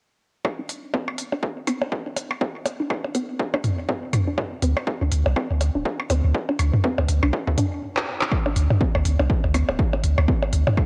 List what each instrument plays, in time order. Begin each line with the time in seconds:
0.44 kick, percussion blips
0.59 synth arpeggio sound D4
0.69 open hi-hat
0.94 synth arpeggio sound C4, kick, percussion blips
1.08 percussion blips
1.18 open hi-hat
1.32 synth arpeggio sound D4, percussion blips
1.43 kick
1.67 synth arpeggio sound C4, open hi-hat, percussion blips
1.82 percussion blips
1.92 kick
2.06 synth arpeggio sound D4
2.17 open hi-hat, percussion blips
2.31 percussion blips
2.41 synth arpeggio sound C4, kick
2.66 open hi-hat, percussion blips
2.80 synth arpeggio sound D4
2.90 kick, percussion blips
3.05 percussion blips
3.15 synth arpeggio sound C4, open hi-hat
3.40 kick
3.54 synth arpeggio sound D4, kick, percussion blips
3.64 mid tom, open hi-hat
3.89 synth arpeggio sound C4, kick, percussion blips
4.13 mid tom, open hi-hat, percussion blips
4.28 synth arpeggio sound D4
4.38 kick, percussion blips
4.62 sub bass D2, synth arpeggio sound C4, open hi-hat
4.77 percussion blips
4.87 kick
5.01 sub bass D2, synth arpeggio sound D4
5.12 sub bass D2, open hi-hat
5.26 sub bass C2, percussion blips
5.36 synth arpeggio sound C4, kick, percussion blips
5.50 sub bass D2
5.61 open hi-hat, percussion blips
5.75 sub bass D1, synth arpeggio sound D4
5.85 kick
6.00 percussion blips
6.10 sub bass D2, synth arpeggio sound C4, open hi-hat, percussion blips
6.24 sub bass D2
6.35 kick
6.49 synth arpeggio sound D4, percussion blips
6.59 sub bass D2, open hi-hat, percussion blips
6.74 mid tom
6.84 synth arpeggio sound C4, kick
6.98 sub bass D2, percussion blips
7.08 sub bass D2, open hi-hat
7.23 sub bass C2, synth arpeggio sound D4, percussion blips
7.33 kick, percussion blips
7.47 sub bass D2, kick
7.58 synth arpeggio sound D4, mid tom, open hi-hat
7.96 clap
8.21 clap
8.31 kick, percussion blips
8.46 synth arpeggio sound D4, percussion blips
8.56 sub bass D2, open hi-hat
8.70 mid tom, percussion blips
8.81 synth arpeggio sound C4, kick
8.95 sub bass D2, percussion blips
9.05 sub bass D2, open hi-hat
9.19 sub bass C2, synth arpeggio sound D4, percussion blips
9.30 kick
9.44 sub bass D2, percussion blips
9.54 synth arpeggio sound C4, open hi-hat, percussion blips
9.69 sub bass D1, percussion blips
9.79 kick
9.93 synth arpeggio sound D4, percussion blips
10.03 sub bass D2, open hi-hat
10.18 sub bass D2, percussion blips
10.28 synth arpeggio sound C4, kick
10.42 percussion blips
10.53 sub bass D2, open hi-hat
10.67 synth arpeggio sound D4, mid tom, percussion blips
10.77 kick, percussion blips